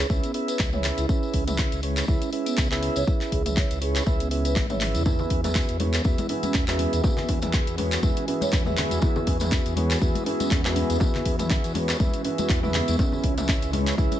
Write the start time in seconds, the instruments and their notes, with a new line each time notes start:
0.10 analog synth bass C#2, tonewheel organ C#4 E4 G#4 B4 E5, marimba C#4, kick, tambourine
0.23 marimba B3, closed hi-hat, tambourine
0.34 tonewheel organ C#4 E4 G#4 B4 E5, open hi-hat
0.48 marimba B4, closed hi-hat, tambourine
0.59 analog synth bass C#2, kick, clap, tambourine
0.73 tonewheel organ C#4 E4 G#4 B4 E5, marimba C#5, mid tom, tambourine
0.84 clap, open hi-hat
0.98 analog synth bass C#2, marimba E4, closed hi-hat, tambourine
1.08 marimba C#4, tonewheel organ C#4 E4 G#4 B4 E5, kick, tambourine
1.23 tambourine
1.33 analog synth bass C#2, marimba C#4, kick, open hi-hat
1.47 tonewheel organ C#4 E4 G#4 B4 E5, closed hi-hat, mid tom, tambourine
1.58 marimba E4, kick, clap, tambourine
1.72 analog synth bass C#2, closed hi-hat, tambourine
1.83 marimba G#3, tonewheel organ C#4 E4 G#4 B4 C#5, open hi-hat
1.97 clap, closed hi-hat, tambourine
2.08 analog synth bass C#2, tonewheel organ C#4 E4 G#4 B4 E5, marimba E4, kick, tambourine
2.22 marimba C#4, closed hi-hat, tambourine
2.33 tonewheel organ C#4 E4 G#4 B4 E5, open hi-hat
2.46 marimba B3, closed hi-hat, tambourine
2.57 analog synth bass C#2, kick, clap, tambourine
2.71 tonewheel organ C#4 E4 G#4 B4 E5, marimba E4, clap, tambourine
2.83 open hi-hat
2.96 analog synth bass C#2, marimba C#5, closed hi-hat, tambourine
3.07 tonewheel organ C#4 E4 G#4 B4 E5, marimba E4, kick, tambourine
3.21 clap, closed hi-hat, tambourine
3.32 analog synth bass C#2, marimba G#4, kick, open hi-hat
3.46 tonewheel organ C#4 E4 G#4 B4 E5, closed hi-hat, mid tom, tambourine
3.57 marimba C#5, kick, clap, tambourine
3.71 analog synth bass C#2, closed hi-hat, tambourine
3.81 tonewheel organ C#4 E4 G#4 B4 C#5, marimba G#4, open hi-hat
3.96 clap, closed hi-hat, tambourine
4.06 analog synth bass C#2, tonewheel organ C#4 E4 G#4 B4 E5, marimba C#4, kick, tambourine
4.20 marimba B3, closed hi-hat, tambourine
4.31 tonewheel organ C#4 E4 G#4 B4 E5, open hi-hat
4.45 marimba B4, closed hi-hat, tambourine
4.56 analog synth bass G#1, kick, clap, high tom, tambourine
4.70 tonewheel organ C#4 E4 G#4 B4 E5, marimba C#5, closed hi-hat, mid tom, high tom, tambourine
4.81 clap, open hi-hat, mid tom
4.94 analog synth bass E2, marimba E4, mid tom, open hi-hat, tambourine
5.05 analog synth pad E3 B3 F#4 G#4, tonewheel organ B3 E4 G#4 B4 E5, marimba E4, kick, tambourine, djembe slap, djembe tone, low conga
5.19 tambourine, low conga
5.30 analog synth bass E2, marimba E4, kick, open hi-hat, djembe tone
5.44 tonewheel organ B3 E4 G#4 B4 E5, closed hi-hat, mid tom, tambourine, djembe slap
5.55 marimba F#4, kick, clap, tambourine, djembe tone
5.68 analog synth bass E2, closed hi-hat, tambourine
5.80 tonewheel organ B3 E4 G#4 B4 C#5, marimba B3, open hi-hat, high conga, djembe tone
5.94 clap, closed hi-hat, tambourine
6.04 analog synth bass E2, tonewheel organ B3 E4 G#4 B4 E5, marimba F#4, kick, tambourine, djembe tone
6.18 marimba E4, closed hi-hat, tambourine, high conga
6.29 tonewheel organ B3 E4 G#4 B4 E5, open hi-hat, djembe tone
6.43 marimba C#4, closed hi-hat, tambourine, high conga
6.54 analog synth bass E2, kick, clap, tambourine, djembe tone
6.68 tonewheel organ B3 E4 G#4 B4 E5, marimba F#4, clap, tambourine, djembe slap, high conga
6.79 open hi-hat, djembe tone, high conga
6.93 analog synth bass E2, marimba E5, closed hi-hat, tambourine
7.03 tonewheel organ B3 E4 G#4 B4 E5, marimba F#4, kick, tambourine, djembe slap, djembe tone, low conga
7.17 clap, tambourine, low conga
7.29 analog synth bass E2, marimba B4, kick, open hi-hat, djembe tone
7.42 tonewheel organ B3 E4 G#4 B4 E5, closed hi-hat, mid tom, tambourine, djembe slap
7.53 marimba E5, kick, clap, tambourine, djembe tone
7.67 analog synth bass E2, closed hi-hat, tambourine
7.78 tonewheel organ B3 E4 G#4 B4 C#5, marimba B4, open hi-hat, djembe tone, high conga
7.92 clap, closed hi-hat, tambourine
8.03 analog synth bass E2, tonewheel organ B3 E4 G#4 B4 E5, marimba E4, kick, tambourine, high conga, djembe tone
8.17 marimba C#4, closed hi-hat, tambourine
8.28 tonewheel organ B3 E4 G#4 B4 E5, open hi-hat, djembe tone
8.41 marimba C#5, closed hi-hat, tambourine, high conga
8.53 analog synth bass E2, kick, clap, tambourine, djembe tone
8.65 tonewheel organ B3 E4 G#4 B4 E5, marimba E5, mid tom, tambourine, high conga, low conga
8.77 clap, open hi-hat, high conga, djembe tone, low conga
8.90 analog synth bass E2, marimba F#4, closed hi-hat, tambourine, high conga
9.01 tonewheel organ B3 E4 G#4 B4 E5, marimba E4, kick, tambourine, djembe slap, djembe tone, low conga
9.16 tambourine, low conga
9.27 analog synth bass E2, marimba E4, kick, open hi-hat, djembe tone
9.40 tonewheel organ B3 E4 G#4 B4 E5, closed hi-hat, mid tom, tambourine, djembe slap
9.51 marimba F#4, kick, clap, tambourine, djembe tone
9.66 analog synth bass E2, closed hi-hat, tambourine
9.76 tonewheel organ B3 E4 G#4 B4 C#5, marimba B3, open hi-hat, djembe tone, high conga
9.91 clap, closed hi-hat, tambourine
10.01 analog synth bass E2, tonewheel organ B3 E4 G#4 B4 E5, marimba F#4, kick, tambourine, djembe tone
10.15 marimba E4, closed hi-hat, tambourine, high conga
10.26 tonewheel organ B3 E4 G#4 B4 E5, open hi-hat, djembe tone
10.40 marimba C#4, closed hi-hat, tambourine, high conga
10.51 analog synth bass E2, kick, clap, tambourine, djembe tone
10.65 tonewheel organ B3 E4 G#4 B4 E5, marimba F#4, clap, tambourine, djembe slap, high conga
10.76 open hi-hat, djembe tone, high conga
10.90 analog synth bass E2, marimba E5, closed hi-hat, tambourine
11.00 tonewheel organ B3 E4 G#4 B4 E5, marimba F#4, kick, tambourine, djembe slap, djembe tone, low conga
11.15 clap, tambourine, low conga
11.25 analog synth bass E2, marimba B4, kick, open hi-hat, djembe tone
11.39 tonewheel organ B3 E4 G#4 B4 E5, closed hi-hat, mid tom, tambourine, djembe slap
11.50 marimba E5, kick, clap, tambourine, djembe tone
11.64 analog synth bass E2, closed hi-hat, tambourine
11.74 tonewheel organ B3 E4 G#4 B4 C#5, marimba B4, open hi-hat, djembe tone, high conga
11.88 clap, closed hi-hat, tambourine, djembe slap
12.00 analog synth bass E2, tonewheel organ B3 E4 G#4 B4 E5, marimba E4, kick, tambourine, djembe tone, high conga
12.14 marimba C#4, closed hi-hat, tambourine
12.25 tonewheel organ B3 E4 G#4 B4 E5, open hi-hat, djembe tone
12.38 marimba F#4, closed hi-hat, tambourine, high conga
12.49 analog synth bass E2, marimba E4, kick, clap, tambourine, djembe tone
12.63 tonewheel organ B3 E4 G#4 B4 E5, marimba B3, mid tom, tambourine, high conga, low conga
12.74 clap, open hi-hat, high conga, djembe tone, low conga
12.88 analog synth bass E2, marimba B3, closed hi-hat, tambourine, high conga
12.99 analog synth pad C#3 G#3 C#4 E4, tonewheel organ C#4 E4 G#4 B4 E5, marimba C#4, kick, tambourine, djembe slap, djembe tone, low conga
13.12 tambourine, low conga
13.24 analog synth bass C#2, marimba C#4, kick, open hi-hat, djembe tone
13.37 tonewheel organ C#4 E4 G#4 B4 E5, closed hi-hat, mid tom, tambourine, djembe slap
13.49 marimba E4, kick, clap, tambourine, djembe tone
13.62 analog synth bass C#2, closed hi-hat, tambourine
13.73 marimba G#3, tonewheel organ C#4 E4 G#4 B4 C#5, open hi-hat, high conga, djembe tone
13.87 clap, closed hi-hat, tambourine
13.98 analog synth bass C#2, tonewheel organ C#4 E4 G#4 B4 E5, marimba E4, kick, tambourine, djembe tone
14.11 marimba C#4, closed hi-hat, tambourine, high conga